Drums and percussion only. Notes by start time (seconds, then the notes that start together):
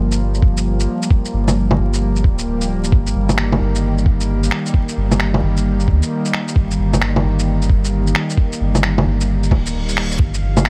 0.12 shaker
0.34 shaker
0.42 kick
0.57 shaker
0.80 shaker
1.02 shaker
1.11 kick
1.25 shaker
1.48 low bongo, shaker
1.71 low bongo
1.93 shaker
2.16 shaker
2.24 kick
2.39 shaker
2.61 shaker
2.84 shaker
2.92 kick
3.07 shaker
3.29 low bongo, shaker
3.38 finger snap
3.52 low bongo
3.75 shaker
3.98 shaker
4.06 kick
4.20 shaker
4.43 shaker
4.51 finger snap
4.66 shaker
4.74 kick
4.89 shaker
5.12 low bongo, shaker
5.20 finger snap
5.34 low bongo
5.57 shaker
5.80 shaker
5.88 kick
6.02 shaker
6.25 shaker
6.33 finger snap
6.48 shaker
6.56 kick
6.71 shaker
6.94 low bongo, shaker
7.02 finger snap
7.16 low bongo
7.39 shaker
7.62 shaker
7.69 kick
7.84 shaker
8.07 shaker
8.15 finger snap
8.30 shaker
8.38 kick
8.53 shaker
8.75 low bongo, shaker
8.83 finger snap
8.98 low bongo
9.21 shaker
9.43 shaker
9.51 kick, low bongo
9.66 shaker
9.89 shaker
9.97 finger snap
10.11 shaker
10.19 kick
10.34 shaker
10.57 low bongo, shaker
10.65 finger snap